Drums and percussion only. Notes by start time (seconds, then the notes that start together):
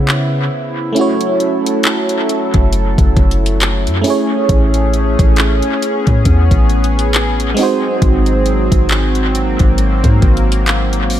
0.08 clap
0.96 closed hi-hat
1.21 closed hi-hat
1.40 closed hi-hat
1.66 closed hi-hat
1.83 clap, closed hi-hat
2.09 closed hi-hat
2.29 closed hi-hat
2.54 kick, closed hi-hat
2.73 closed hi-hat
2.98 kick, closed hi-hat
3.17 kick, closed hi-hat
3.31 closed hi-hat
3.46 closed hi-hat
3.61 clap, closed hi-hat
3.87 closed hi-hat
4.04 open hi-hat
4.49 kick, closed hi-hat
4.74 closed hi-hat
4.94 closed hi-hat
5.19 kick, closed hi-hat
5.36 clap, closed hi-hat
5.62 closed hi-hat
5.82 closed hi-hat
6.07 kick, closed hi-hat
6.25 kick, closed hi-hat
6.51 kick, closed hi-hat
6.70 closed hi-hat
6.84 closed hi-hat
6.99 closed hi-hat
7.14 clap, closed hi-hat
7.40 closed hi-hat
7.57 open hi-hat
8.02 kick, closed hi-hat
8.26 closed hi-hat
8.46 closed hi-hat
8.72 kick, closed hi-hat
8.89 clap, closed hi-hat
9.15 closed hi-hat
9.35 closed hi-hat
9.59 kick, closed hi-hat
9.78 closed hi-hat
10.04 kick, closed hi-hat
10.22 kick, closed hi-hat
10.37 closed hi-hat
10.52 closed hi-hat
10.67 clap, closed hi-hat
10.93 closed hi-hat
11.10 open hi-hat